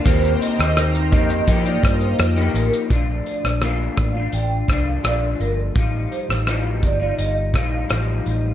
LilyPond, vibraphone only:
\new Staff \with { instrumentName = "Vibraphone" } { \time 4/4 \key bes \major \tempo 4 = 84 c''8 ees''8 r8 ees''8 r16 d''16 r16 c''16 r8 bes'16 r16 | r8 d''16 r8. f''8 g''16 r8 f''16 d''16 r16 bes'16 r16 | r8 c''16 r8. d''8 ees''16 r8 f''16 r4 | }